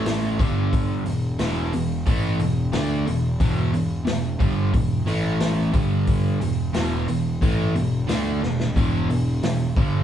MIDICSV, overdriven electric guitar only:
0, 0, Header, 1, 2, 480
1, 0, Start_track
1, 0, Key_signature, 1, "minor"
1, 0, Tempo, 668896
1, 523, Time_signature, 4, 2, 24, 8
1, 7202, End_track
2, 0, Start_track
2, 0, Title_t, "Overdriven electric guitar"
2, 0, Program_c, 0, 29
2, 0, Note_on_c, 0, 45, 80
2, 0, Note_on_c, 0, 52, 87
2, 0, Note_on_c, 0, 57, 95
2, 278, Note_off_c, 0, 57, 0
2, 278, Note_on_c, 0, 43, 83
2, 281, Note_off_c, 0, 45, 0
2, 281, Note_on_c, 0, 50, 91
2, 286, Note_off_c, 0, 52, 0
2, 286, Note_on_c, 0, 55, 102
2, 751, Note_off_c, 0, 43, 0
2, 753, Note_on_c, 0, 40, 52
2, 756, Note_off_c, 0, 50, 0
2, 758, Note_on_c, 0, 47, 61
2, 759, Note_off_c, 0, 55, 0
2, 951, Note_off_c, 0, 40, 0
2, 954, Note_off_c, 0, 47, 0
2, 996, Note_on_c, 0, 40, 82
2, 999, Note_on_c, 0, 47, 86
2, 1007, Note_on_c, 0, 52, 89
2, 1234, Note_off_c, 0, 40, 0
2, 1235, Note_off_c, 0, 47, 0
2, 1239, Note_off_c, 0, 52, 0
2, 1245, Note_on_c, 0, 40, 57
2, 1247, Note_on_c, 0, 47, 72
2, 1437, Note_off_c, 0, 40, 0
2, 1439, Note_off_c, 0, 47, 0
2, 1479, Note_on_c, 0, 45, 80
2, 1484, Note_on_c, 0, 52, 100
2, 1489, Note_on_c, 0, 57, 90
2, 1716, Note_off_c, 0, 45, 0
2, 1718, Note_off_c, 0, 52, 0
2, 1720, Note_off_c, 0, 57, 0
2, 1724, Note_on_c, 0, 40, 58
2, 1727, Note_on_c, 0, 47, 66
2, 1917, Note_off_c, 0, 40, 0
2, 1919, Note_off_c, 0, 47, 0
2, 1955, Note_on_c, 0, 50, 79
2, 1962, Note_on_c, 0, 57, 92
2, 1967, Note_on_c, 0, 62, 91
2, 2194, Note_off_c, 0, 50, 0
2, 2197, Note_off_c, 0, 57, 0
2, 2199, Note_on_c, 0, 40, 60
2, 2200, Note_off_c, 0, 62, 0
2, 2202, Note_on_c, 0, 47, 72
2, 2395, Note_off_c, 0, 40, 0
2, 2397, Note_off_c, 0, 47, 0
2, 2439, Note_on_c, 0, 40, 81
2, 2442, Note_on_c, 0, 47, 92
2, 2447, Note_on_c, 0, 52, 92
2, 2670, Note_off_c, 0, 40, 0
2, 2670, Note_off_c, 0, 47, 0
2, 2678, Note_on_c, 0, 40, 55
2, 2679, Note_on_c, 0, 47, 59
2, 2680, Note_off_c, 0, 52, 0
2, 2875, Note_off_c, 0, 40, 0
2, 2875, Note_off_c, 0, 47, 0
2, 2907, Note_on_c, 0, 40, 57
2, 2910, Note_on_c, 0, 47, 66
2, 3109, Note_off_c, 0, 40, 0
2, 3111, Note_off_c, 0, 47, 0
2, 3151, Note_on_c, 0, 43, 91
2, 3155, Note_on_c, 0, 50, 82
2, 3161, Note_on_c, 0, 55, 98
2, 3390, Note_off_c, 0, 43, 0
2, 3393, Note_off_c, 0, 50, 0
2, 3393, Note_on_c, 0, 40, 65
2, 3396, Note_on_c, 0, 47, 64
2, 3397, Note_off_c, 0, 55, 0
2, 3592, Note_off_c, 0, 40, 0
2, 3594, Note_off_c, 0, 47, 0
2, 3632, Note_on_c, 0, 45, 77
2, 3638, Note_on_c, 0, 52, 86
2, 3640, Note_on_c, 0, 57, 96
2, 4109, Note_on_c, 0, 43, 75
2, 4112, Note_off_c, 0, 45, 0
2, 4115, Note_off_c, 0, 52, 0
2, 4115, Note_on_c, 0, 50, 83
2, 4117, Note_off_c, 0, 57, 0
2, 4119, Note_on_c, 0, 55, 92
2, 4591, Note_off_c, 0, 43, 0
2, 4594, Note_off_c, 0, 50, 0
2, 4596, Note_off_c, 0, 55, 0
2, 4598, Note_on_c, 0, 40, 57
2, 4602, Note_on_c, 0, 47, 61
2, 4795, Note_off_c, 0, 40, 0
2, 4797, Note_off_c, 0, 47, 0
2, 4831, Note_on_c, 0, 40, 84
2, 4839, Note_on_c, 0, 47, 88
2, 4842, Note_on_c, 0, 52, 88
2, 5072, Note_off_c, 0, 40, 0
2, 5073, Note_off_c, 0, 47, 0
2, 5077, Note_off_c, 0, 52, 0
2, 5079, Note_on_c, 0, 40, 62
2, 5081, Note_on_c, 0, 47, 65
2, 5275, Note_off_c, 0, 40, 0
2, 5276, Note_off_c, 0, 47, 0
2, 5319, Note_on_c, 0, 45, 82
2, 5324, Note_on_c, 0, 52, 81
2, 5328, Note_on_c, 0, 57, 94
2, 5556, Note_off_c, 0, 45, 0
2, 5558, Note_off_c, 0, 52, 0
2, 5560, Note_off_c, 0, 57, 0
2, 5564, Note_on_c, 0, 40, 58
2, 5566, Note_on_c, 0, 47, 60
2, 5757, Note_off_c, 0, 40, 0
2, 5758, Note_off_c, 0, 47, 0
2, 5796, Note_on_c, 0, 50, 81
2, 5804, Note_on_c, 0, 57, 90
2, 5804, Note_on_c, 0, 62, 87
2, 6034, Note_off_c, 0, 50, 0
2, 6038, Note_off_c, 0, 57, 0
2, 6038, Note_off_c, 0, 62, 0
2, 6040, Note_on_c, 0, 40, 58
2, 6043, Note_on_c, 0, 47, 72
2, 6235, Note_off_c, 0, 40, 0
2, 6236, Note_off_c, 0, 47, 0
2, 6283, Note_on_c, 0, 40, 79
2, 6289, Note_on_c, 0, 47, 88
2, 6295, Note_on_c, 0, 52, 97
2, 6516, Note_off_c, 0, 47, 0
2, 6517, Note_off_c, 0, 40, 0
2, 6523, Note_off_c, 0, 52, 0
2, 6524, Note_on_c, 0, 40, 56
2, 6525, Note_on_c, 0, 47, 59
2, 6717, Note_off_c, 0, 40, 0
2, 6717, Note_off_c, 0, 47, 0
2, 6768, Note_on_c, 0, 40, 66
2, 6768, Note_on_c, 0, 47, 67
2, 6958, Note_off_c, 0, 40, 0
2, 6959, Note_off_c, 0, 47, 0
2, 7007, Note_on_c, 0, 43, 79
2, 7013, Note_on_c, 0, 50, 84
2, 7016, Note_on_c, 0, 55, 96
2, 7202, Note_off_c, 0, 43, 0
2, 7202, Note_off_c, 0, 50, 0
2, 7202, Note_off_c, 0, 55, 0
2, 7202, End_track
0, 0, End_of_file